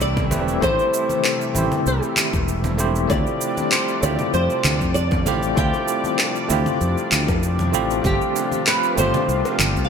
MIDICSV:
0, 0, Header, 1, 6, 480
1, 0, Start_track
1, 0, Tempo, 618557
1, 484, Time_signature, 4, 2, 24, 8
1, 7675, End_track
2, 0, Start_track
2, 0, Title_t, "Nylon-string guitar"
2, 0, Program_c, 0, 24
2, 11, Note_on_c, 0, 74, 110
2, 487, Note_off_c, 0, 74, 0
2, 490, Note_on_c, 0, 72, 103
2, 1454, Note_on_c, 0, 67, 80
2, 1476, Note_off_c, 0, 72, 0
2, 2138, Note_off_c, 0, 67, 0
2, 2407, Note_on_c, 0, 74, 91
2, 2881, Note_off_c, 0, 74, 0
2, 2884, Note_on_c, 0, 72, 84
2, 3123, Note_off_c, 0, 72, 0
2, 3126, Note_on_c, 0, 74, 88
2, 3362, Note_off_c, 0, 74, 0
2, 3365, Note_on_c, 0, 72, 90
2, 3833, Note_off_c, 0, 72, 0
2, 3836, Note_on_c, 0, 74, 97
2, 4079, Note_off_c, 0, 74, 0
2, 4083, Note_on_c, 0, 77, 99
2, 4148, Note_off_c, 0, 77, 0
2, 4326, Note_on_c, 0, 79, 110
2, 5974, Note_off_c, 0, 79, 0
2, 6251, Note_on_c, 0, 67, 97
2, 6697, Note_off_c, 0, 67, 0
2, 6733, Note_on_c, 0, 71, 102
2, 6969, Note_off_c, 0, 71, 0
2, 6972, Note_on_c, 0, 72, 104
2, 7637, Note_off_c, 0, 72, 0
2, 7640, Note_on_c, 0, 77, 84
2, 7675, Note_off_c, 0, 77, 0
2, 7675, End_track
3, 0, Start_track
3, 0, Title_t, "Tine electric piano"
3, 0, Program_c, 1, 4
3, 0, Control_c, 1, 64, 127
3, 0, Note_on_c, 1, 57, 85
3, 0, Note_on_c, 1, 60, 81
3, 0, Note_on_c, 1, 64, 83
3, 0, Note_on_c, 1, 67, 77
3, 0, Note_on_c, 1, 71, 99
3, 0, Note_on_c, 1, 72, 102
3, 208, Note_off_c, 1, 57, 0
3, 211, Note_off_c, 1, 60, 0
3, 217, Note_off_c, 1, 64, 0
3, 221, Note_off_c, 1, 67, 0
3, 226, Note_off_c, 1, 72, 0
3, 236, Note_on_c, 1, 57, 95
3, 240, Note_on_c, 1, 60, 81
3, 244, Note_on_c, 1, 64, 83
3, 250, Note_on_c, 1, 67, 87
3, 253, Note_off_c, 1, 71, 0
3, 253, Note_on_c, 1, 71, 95
3, 388, Note_off_c, 1, 57, 0
3, 390, Note_off_c, 1, 60, 0
3, 392, Note_off_c, 1, 64, 0
3, 395, Note_off_c, 1, 67, 0
3, 397, Note_off_c, 1, 71, 0
3, 470, Note_on_c, 1, 57, 85
3, 477, Note_on_c, 1, 60, 79
3, 489, Note_on_c, 1, 64, 80
3, 497, Note_on_c, 1, 67, 78
3, 506, Note_on_c, 1, 72, 97
3, 1170, Note_off_c, 1, 57, 0
3, 1174, Note_off_c, 1, 60, 0
3, 1180, Note_off_c, 1, 64, 0
3, 1184, Note_off_c, 1, 67, 0
3, 1188, Note_off_c, 1, 72, 0
3, 1191, Note_on_c, 1, 57, 87
3, 1201, Note_on_c, 1, 60, 78
3, 1210, Note_on_c, 1, 64, 77
3, 1219, Note_on_c, 1, 67, 78
3, 1228, Note_on_c, 1, 72, 100
3, 2131, Note_off_c, 1, 57, 0
3, 2136, Note_off_c, 1, 60, 0
3, 2140, Note_off_c, 1, 64, 0
3, 2145, Note_off_c, 1, 67, 0
3, 2149, Note_off_c, 1, 72, 0
3, 2155, Note_on_c, 1, 57, 89
3, 2160, Note_on_c, 1, 60, 87
3, 2166, Note_on_c, 1, 64, 85
3, 2171, Note_on_c, 1, 67, 84
3, 2175, Note_on_c, 1, 72, 101
3, 2373, Note_off_c, 1, 57, 0
3, 2375, Note_off_c, 1, 60, 0
3, 2378, Note_off_c, 1, 64, 0
3, 2381, Note_off_c, 1, 67, 0
3, 2383, Note_off_c, 1, 72, 0
3, 2388, Note_on_c, 1, 57, 82
3, 2397, Note_on_c, 1, 60, 84
3, 2406, Note_on_c, 1, 64, 82
3, 2415, Control_c, 1, 64, 0
3, 2417, Note_on_c, 1, 65, 79
3, 2426, Note_on_c, 1, 67, 101
3, 2563, Control_c, 1, 64, 127
3, 3089, Note_off_c, 1, 57, 0
3, 3094, Note_off_c, 1, 60, 0
3, 3098, Note_off_c, 1, 64, 0
3, 3104, Note_off_c, 1, 65, 0
3, 3108, Note_off_c, 1, 67, 0
3, 3110, Note_on_c, 1, 57, 88
3, 3119, Note_on_c, 1, 60, 77
3, 3128, Note_on_c, 1, 64, 81
3, 3136, Note_on_c, 1, 65, 80
3, 3147, Note_on_c, 1, 67, 98
3, 4050, Note_off_c, 1, 57, 0
3, 4055, Note_off_c, 1, 60, 0
3, 4059, Note_off_c, 1, 64, 0
3, 4063, Note_off_c, 1, 65, 0
3, 4069, Note_off_c, 1, 67, 0
3, 4078, Note_on_c, 1, 57, 88
3, 4082, Note_on_c, 1, 60, 86
3, 4085, Note_on_c, 1, 64, 82
3, 4091, Note_on_c, 1, 65, 82
3, 4097, Note_on_c, 1, 67, 100
3, 4230, Note_off_c, 1, 57, 0
3, 4232, Note_off_c, 1, 60, 0
3, 4233, Note_off_c, 1, 64, 0
3, 4236, Note_off_c, 1, 65, 0
3, 4239, Note_off_c, 1, 67, 0
3, 4309, Note_on_c, 1, 57, 87
3, 4318, Note_on_c, 1, 60, 81
3, 4326, Note_on_c, 1, 64, 79
3, 4338, Note_on_c, 1, 65, 83
3, 4347, Note_on_c, 1, 67, 99
3, 5010, Note_off_c, 1, 57, 0
3, 5014, Note_off_c, 1, 60, 0
3, 5018, Note_off_c, 1, 64, 0
3, 5024, Note_off_c, 1, 65, 0
3, 5029, Note_off_c, 1, 67, 0
3, 5029, Note_on_c, 1, 57, 87
3, 5037, Note_on_c, 1, 60, 82
3, 5046, Note_on_c, 1, 64, 83
3, 5058, Note_on_c, 1, 65, 80
3, 5067, Note_on_c, 1, 67, 94
3, 5970, Note_off_c, 1, 57, 0
3, 5974, Note_off_c, 1, 60, 0
3, 5978, Note_off_c, 1, 64, 0
3, 5984, Note_off_c, 1, 65, 0
3, 5989, Note_off_c, 1, 67, 0
3, 5994, Note_on_c, 1, 57, 87
3, 6000, Note_on_c, 1, 60, 87
3, 6005, Note_on_c, 1, 64, 88
3, 6009, Note_on_c, 1, 65, 84
3, 6012, Note_on_c, 1, 67, 103
3, 6148, Note_off_c, 1, 57, 0
3, 6151, Note_off_c, 1, 60, 0
3, 6153, Note_off_c, 1, 64, 0
3, 6155, Note_off_c, 1, 65, 0
3, 6157, Note_off_c, 1, 67, 0
3, 6222, Note_on_c, 1, 57, 89
3, 6233, Note_on_c, 1, 60, 76
3, 6242, Note_on_c, 1, 62, 85
3, 6252, Note_on_c, 1, 65, 85
3, 6254, Control_c, 1, 64, 0
3, 6262, Note_on_c, 1, 67, 98
3, 6374, Control_c, 1, 64, 127
3, 6926, Note_off_c, 1, 57, 0
3, 6932, Note_off_c, 1, 60, 0
3, 6936, Note_off_c, 1, 62, 0
3, 6941, Note_off_c, 1, 65, 0
3, 6946, Note_off_c, 1, 67, 0
3, 6950, Note_on_c, 1, 57, 95
3, 6960, Note_on_c, 1, 60, 83
3, 6970, Note_on_c, 1, 62, 81
3, 6981, Note_on_c, 1, 65, 81
3, 6990, Note_on_c, 1, 67, 98
3, 7675, Note_off_c, 1, 57, 0
3, 7675, Note_off_c, 1, 60, 0
3, 7675, Note_off_c, 1, 62, 0
3, 7675, Note_off_c, 1, 65, 0
3, 7675, Note_off_c, 1, 67, 0
3, 7675, End_track
4, 0, Start_track
4, 0, Title_t, "Analog synth pad"
4, 0, Program_c, 2, 89
4, 0, Note_on_c, 2, 48, 79
4, 0, Note_on_c, 2, 52, 75
4, 0, Note_on_c, 2, 55, 74
4, 0, Note_on_c, 2, 57, 76
4, 0, Note_on_c, 2, 64, 90
4, 2374, Note_off_c, 2, 52, 0
4, 2374, Note_off_c, 2, 57, 0
4, 2375, Note_off_c, 2, 64, 0
4, 2408, Note_on_c, 2, 62, 72
4, 2408, Note_on_c, 2, 74, 89
4, 2410, Note_on_c, 2, 53, 78
4, 6214, Note_off_c, 2, 48, 0
4, 6215, Note_off_c, 2, 55, 0
4, 6216, Note_off_c, 2, 74, 0
4, 6244, Note_on_c, 2, 65, 84
4, 6245, Note_on_c, 2, 48, 86
4, 6245, Note_on_c, 2, 55, 75
4, 7675, Note_off_c, 2, 48, 0
4, 7675, Note_off_c, 2, 53, 0
4, 7675, Note_off_c, 2, 55, 0
4, 7675, Note_off_c, 2, 62, 0
4, 7675, Note_off_c, 2, 65, 0
4, 7675, End_track
5, 0, Start_track
5, 0, Title_t, "Fingered electric bass"
5, 0, Program_c, 3, 33
5, 0, Note_on_c, 3, 36, 95
5, 246, Note_off_c, 3, 36, 0
5, 246, Note_on_c, 3, 28, 85
5, 447, Note_off_c, 3, 28, 0
5, 484, Note_on_c, 3, 33, 104
5, 590, Note_off_c, 3, 33, 0
5, 1206, Note_on_c, 3, 33, 98
5, 1311, Note_off_c, 3, 33, 0
5, 1446, Note_on_c, 3, 36, 90
5, 1550, Note_off_c, 3, 36, 0
5, 1812, Note_on_c, 3, 28, 90
5, 2374, Note_off_c, 3, 28, 0
5, 2406, Note_on_c, 3, 38, 99
5, 2511, Note_off_c, 3, 38, 0
5, 3127, Note_on_c, 3, 38, 106
5, 3231, Note_off_c, 3, 38, 0
5, 3366, Note_on_c, 3, 41, 90
5, 3471, Note_off_c, 3, 41, 0
5, 3606, Note_on_c, 3, 38, 100
5, 3711, Note_off_c, 3, 38, 0
5, 3732, Note_on_c, 3, 41, 96
5, 4088, Note_off_c, 3, 41, 0
5, 4088, Note_on_c, 3, 33, 79
5, 4287, Note_off_c, 3, 33, 0
5, 4324, Note_on_c, 3, 38, 101
5, 4430, Note_off_c, 3, 38, 0
5, 5046, Note_on_c, 3, 38, 99
5, 5151, Note_off_c, 3, 38, 0
5, 5287, Note_on_c, 3, 41, 90
5, 5391, Note_off_c, 3, 41, 0
5, 5527, Note_on_c, 3, 38, 105
5, 5631, Note_off_c, 3, 38, 0
5, 5652, Note_on_c, 3, 41, 97
5, 6009, Note_off_c, 3, 41, 0
5, 6009, Note_on_c, 3, 33, 76
5, 6208, Note_off_c, 3, 33, 0
5, 6246, Note_on_c, 3, 31, 103
5, 6351, Note_off_c, 3, 31, 0
5, 6967, Note_on_c, 3, 31, 104
5, 7071, Note_off_c, 3, 31, 0
5, 7205, Note_on_c, 3, 36, 89
5, 7310, Note_off_c, 3, 36, 0
5, 7444, Note_on_c, 3, 31, 97
5, 7550, Note_off_c, 3, 31, 0
5, 7573, Note_on_c, 3, 36, 107
5, 7675, Note_off_c, 3, 36, 0
5, 7675, End_track
6, 0, Start_track
6, 0, Title_t, "Drums"
6, 6, Note_on_c, 9, 69, 48
6, 84, Note_off_c, 9, 69, 0
6, 131, Note_on_c, 9, 63, 90
6, 132, Note_on_c, 9, 36, 111
6, 135, Note_on_c, 9, 60, 48
6, 135, Note_on_c, 9, 69, 22
6, 208, Note_off_c, 9, 63, 0
6, 209, Note_off_c, 9, 36, 0
6, 212, Note_off_c, 9, 60, 0
6, 212, Note_off_c, 9, 69, 0
6, 241, Note_on_c, 9, 64, 92
6, 244, Note_off_c, 9, 64, 0
6, 244, Note_on_c, 9, 64, 76
6, 246, Note_on_c, 9, 69, 81
6, 321, Note_off_c, 9, 64, 0
6, 324, Note_off_c, 9, 69, 0
6, 373, Note_on_c, 9, 69, 34
6, 451, Note_off_c, 9, 69, 0
6, 483, Note_on_c, 9, 63, 94
6, 484, Note_on_c, 9, 60, 85
6, 485, Note_on_c, 9, 36, 117
6, 488, Note_on_c, 9, 69, 44
6, 561, Note_off_c, 9, 63, 0
6, 562, Note_off_c, 9, 36, 0
6, 562, Note_off_c, 9, 60, 0
6, 565, Note_off_c, 9, 69, 0
6, 614, Note_on_c, 9, 69, 23
6, 692, Note_off_c, 9, 69, 0
6, 728, Note_on_c, 9, 69, 75
6, 806, Note_off_c, 9, 69, 0
6, 849, Note_on_c, 9, 63, 69
6, 854, Note_on_c, 9, 69, 32
6, 927, Note_off_c, 9, 63, 0
6, 932, Note_off_c, 9, 69, 0
6, 959, Note_on_c, 9, 60, 49
6, 965, Note_on_c, 9, 39, 81
6, 968, Note_on_c, 9, 69, 49
6, 1037, Note_off_c, 9, 60, 0
6, 1043, Note_off_c, 9, 39, 0
6, 1046, Note_off_c, 9, 69, 0
6, 1097, Note_on_c, 9, 69, 24
6, 1174, Note_off_c, 9, 69, 0
6, 1200, Note_on_c, 9, 63, 94
6, 1208, Note_on_c, 9, 69, 82
6, 1278, Note_off_c, 9, 63, 0
6, 1285, Note_off_c, 9, 69, 0
6, 1332, Note_on_c, 9, 60, 69
6, 1332, Note_on_c, 9, 64, 75
6, 1335, Note_on_c, 9, 69, 33
6, 1409, Note_off_c, 9, 60, 0
6, 1410, Note_off_c, 9, 64, 0
6, 1413, Note_off_c, 9, 69, 0
6, 1446, Note_on_c, 9, 69, 44
6, 1524, Note_off_c, 9, 69, 0
6, 1573, Note_on_c, 9, 69, 22
6, 1651, Note_off_c, 9, 69, 0
6, 1680, Note_on_c, 9, 63, 64
6, 1683, Note_on_c, 9, 39, 76
6, 1685, Note_on_c, 9, 69, 80
6, 1757, Note_off_c, 9, 63, 0
6, 1761, Note_off_c, 9, 39, 0
6, 1763, Note_off_c, 9, 69, 0
6, 1810, Note_on_c, 9, 60, 45
6, 1812, Note_on_c, 9, 36, 106
6, 1812, Note_on_c, 9, 69, 33
6, 1887, Note_off_c, 9, 60, 0
6, 1890, Note_off_c, 9, 36, 0
6, 1890, Note_off_c, 9, 69, 0
6, 1926, Note_on_c, 9, 69, 46
6, 2003, Note_off_c, 9, 69, 0
6, 2048, Note_on_c, 9, 64, 68
6, 2049, Note_on_c, 9, 63, 90
6, 2053, Note_on_c, 9, 69, 22
6, 2126, Note_off_c, 9, 64, 0
6, 2127, Note_off_c, 9, 63, 0
6, 2131, Note_off_c, 9, 69, 0
6, 2160, Note_on_c, 9, 60, 79
6, 2165, Note_on_c, 9, 69, 80
6, 2238, Note_off_c, 9, 60, 0
6, 2243, Note_off_c, 9, 69, 0
6, 2293, Note_on_c, 9, 69, 36
6, 2371, Note_off_c, 9, 69, 0
6, 2404, Note_on_c, 9, 63, 100
6, 2405, Note_on_c, 9, 36, 112
6, 2407, Note_on_c, 9, 69, 45
6, 2481, Note_off_c, 9, 63, 0
6, 2482, Note_off_c, 9, 36, 0
6, 2485, Note_off_c, 9, 69, 0
6, 2535, Note_on_c, 9, 69, 22
6, 2613, Note_off_c, 9, 69, 0
6, 2647, Note_on_c, 9, 69, 70
6, 2724, Note_off_c, 9, 69, 0
6, 2773, Note_on_c, 9, 60, 48
6, 2774, Note_on_c, 9, 69, 31
6, 2775, Note_on_c, 9, 63, 69
6, 2851, Note_off_c, 9, 60, 0
6, 2851, Note_off_c, 9, 69, 0
6, 2852, Note_off_c, 9, 63, 0
6, 2884, Note_on_c, 9, 39, 78
6, 2886, Note_on_c, 9, 69, 46
6, 2962, Note_off_c, 9, 39, 0
6, 2964, Note_off_c, 9, 69, 0
6, 3014, Note_on_c, 9, 69, 23
6, 3091, Note_off_c, 9, 69, 0
6, 3127, Note_on_c, 9, 69, 72
6, 3129, Note_on_c, 9, 63, 86
6, 3134, Note_on_c, 9, 60, 78
6, 3205, Note_off_c, 9, 69, 0
6, 3207, Note_off_c, 9, 63, 0
6, 3211, Note_off_c, 9, 60, 0
6, 3250, Note_on_c, 9, 64, 76
6, 3251, Note_off_c, 9, 64, 0
6, 3251, Note_on_c, 9, 64, 76
6, 3252, Note_on_c, 9, 69, 34
6, 3329, Note_off_c, 9, 64, 0
6, 3330, Note_off_c, 9, 69, 0
6, 3366, Note_on_c, 9, 69, 41
6, 3444, Note_off_c, 9, 69, 0
6, 3493, Note_on_c, 9, 69, 22
6, 3571, Note_off_c, 9, 69, 0
6, 3603, Note_on_c, 9, 39, 72
6, 3603, Note_on_c, 9, 64, 75
6, 3604, Note_on_c, 9, 60, 52
6, 3606, Note_on_c, 9, 69, 76
6, 3607, Note_on_c, 9, 63, 66
6, 3681, Note_off_c, 9, 39, 0
6, 3681, Note_off_c, 9, 64, 0
6, 3682, Note_off_c, 9, 60, 0
6, 3683, Note_off_c, 9, 69, 0
6, 3685, Note_off_c, 9, 63, 0
6, 3732, Note_on_c, 9, 36, 63
6, 3734, Note_on_c, 9, 69, 32
6, 3809, Note_off_c, 9, 36, 0
6, 3811, Note_off_c, 9, 69, 0
6, 3846, Note_on_c, 9, 69, 45
6, 3923, Note_off_c, 9, 69, 0
6, 3967, Note_on_c, 9, 60, 73
6, 3971, Note_on_c, 9, 36, 100
6, 3972, Note_on_c, 9, 63, 105
6, 3972, Note_on_c, 9, 69, 22
6, 4044, Note_off_c, 9, 60, 0
6, 4049, Note_off_c, 9, 36, 0
6, 4049, Note_off_c, 9, 63, 0
6, 4050, Note_off_c, 9, 69, 0
6, 4083, Note_on_c, 9, 64, 76
6, 4085, Note_on_c, 9, 69, 83
6, 4088, Note_off_c, 9, 64, 0
6, 4088, Note_on_c, 9, 64, 90
6, 4163, Note_off_c, 9, 69, 0
6, 4166, Note_off_c, 9, 64, 0
6, 4212, Note_on_c, 9, 69, 32
6, 4290, Note_off_c, 9, 69, 0
6, 4324, Note_on_c, 9, 36, 111
6, 4325, Note_on_c, 9, 69, 45
6, 4326, Note_on_c, 9, 63, 81
6, 4401, Note_off_c, 9, 36, 0
6, 4402, Note_off_c, 9, 69, 0
6, 4403, Note_off_c, 9, 63, 0
6, 4452, Note_on_c, 9, 60, 50
6, 4452, Note_on_c, 9, 69, 20
6, 4529, Note_off_c, 9, 60, 0
6, 4530, Note_off_c, 9, 69, 0
6, 4563, Note_on_c, 9, 69, 72
6, 4641, Note_off_c, 9, 69, 0
6, 4687, Note_on_c, 9, 63, 59
6, 4692, Note_on_c, 9, 69, 30
6, 4765, Note_off_c, 9, 63, 0
6, 4769, Note_off_c, 9, 69, 0
6, 4801, Note_on_c, 9, 60, 81
6, 4802, Note_on_c, 9, 39, 82
6, 4804, Note_on_c, 9, 69, 47
6, 4879, Note_off_c, 9, 39, 0
6, 4879, Note_off_c, 9, 60, 0
6, 4882, Note_off_c, 9, 69, 0
6, 4933, Note_on_c, 9, 69, 23
6, 5011, Note_off_c, 9, 69, 0
6, 5043, Note_on_c, 9, 69, 74
6, 5044, Note_on_c, 9, 63, 85
6, 5121, Note_off_c, 9, 69, 0
6, 5122, Note_off_c, 9, 63, 0
6, 5169, Note_on_c, 9, 64, 78
6, 5172, Note_on_c, 9, 69, 32
6, 5247, Note_off_c, 9, 64, 0
6, 5249, Note_off_c, 9, 69, 0
6, 5281, Note_on_c, 9, 60, 47
6, 5285, Note_on_c, 9, 69, 38
6, 5359, Note_off_c, 9, 60, 0
6, 5363, Note_off_c, 9, 69, 0
6, 5413, Note_on_c, 9, 69, 20
6, 5491, Note_off_c, 9, 69, 0
6, 5523, Note_on_c, 9, 39, 75
6, 5524, Note_on_c, 9, 63, 60
6, 5525, Note_on_c, 9, 69, 74
6, 5600, Note_off_c, 9, 39, 0
6, 5602, Note_off_c, 9, 63, 0
6, 5603, Note_off_c, 9, 69, 0
6, 5652, Note_on_c, 9, 36, 97
6, 5653, Note_on_c, 9, 60, 84
6, 5654, Note_on_c, 9, 69, 31
6, 5730, Note_off_c, 9, 36, 0
6, 5731, Note_off_c, 9, 60, 0
6, 5731, Note_off_c, 9, 69, 0
6, 5766, Note_on_c, 9, 69, 43
6, 5844, Note_off_c, 9, 69, 0
6, 5890, Note_on_c, 9, 63, 91
6, 5891, Note_on_c, 9, 64, 74
6, 5895, Note_on_c, 9, 69, 20
6, 5967, Note_off_c, 9, 63, 0
6, 5969, Note_off_c, 9, 64, 0
6, 5973, Note_off_c, 9, 69, 0
6, 6005, Note_on_c, 9, 69, 78
6, 6083, Note_off_c, 9, 69, 0
6, 6135, Note_on_c, 9, 69, 33
6, 6136, Note_on_c, 9, 60, 49
6, 6212, Note_off_c, 9, 69, 0
6, 6213, Note_off_c, 9, 60, 0
6, 6241, Note_on_c, 9, 63, 92
6, 6246, Note_on_c, 9, 36, 110
6, 6246, Note_on_c, 9, 69, 44
6, 6318, Note_off_c, 9, 63, 0
6, 6323, Note_off_c, 9, 36, 0
6, 6324, Note_off_c, 9, 69, 0
6, 6375, Note_on_c, 9, 69, 21
6, 6452, Note_off_c, 9, 69, 0
6, 6487, Note_on_c, 9, 60, 77
6, 6487, Note_on_c, 9, 69, 66
6, 6564, Note_off_c, 9, 60, 0
6, 6565, Note_off_c, 9, 69, 0
6, 6609, Note_on_c, 9, 63, 60
6, 6614, Note_on_c, 9, 69, 30
6, 6686, Note_off_c, 9, 63, 0
6, 6692, Note_off_c, 9, 69, 0
6, 6725, Note_on_c, 9, 39, 75
6, 6728, Note_on_c, 9, 69, 45
6, 6803, Note_off_c, 9, 39, 0
6, 6805, Note_off_c, 9, 69, 0
6, 6855, Note_on_c, 9, 69, 23
6, 6932, Note_off_c, 9, 69, 0
6, 6966, Note_on_c, 9, 63, 83
6, 6967, Note_on_c, 9, 69, 74
6, 6968, Note_on_c, 9, 60, 58
6, 7043, Note_off_c, 9, 63, 0
6, 7045, Note_off_c, 9, 69, 0
6, 7046, Note_off_c, 9, 60, 0
6, 7093, Note_on_c, 9, 64, 81
6, 7095, Note_off_c, 9, 64, 0
6, 7095, Note_on_c, 9, 64, 78
6, 7095, Note_on_c, 9, 69, 33
6, 7173, Note_off_c, 9, 64, 0
6, 7173, Note_off_c, 9, 69, 0
6, 7210, Note_on_c, 9, 69, 41
6, 7287, Note_off_c, 9, 69, 0
6, 7335, Note_on_c, 9, 60, 86
6, 7338, Note_on_c, 9, 69, 21
6, 7413, Note_off_c, 9, 60, 0
6, 7416, Note_off_c, 9, 69, 0
6, 7443, Note_on_c, 9, 63, 59
6, 7446, Note_on_c, 9, 39, 81
6, 7446, Note_on_c, 9, 64, 82
6, 7449, Note_on_c, 9, 69, 81
6, 7521, Note_off_c, 9, 63, 0
6, 7524, Note_off_c, 9, 39, 0
6, 7524, Note_off_c, 9, 64, 0
6, 7526, Note_off_c, 9, 69, 0
6, 7574, Note_on_c, 9, 36, 57
6, 7577, Note_on_c, 9, 69, 32
6, 7652, Note_off_c, 9, 36, 0
6, 7655, Note_off_c, 9, 69, 0
6, 7675, End_track
0, 0, End_of_file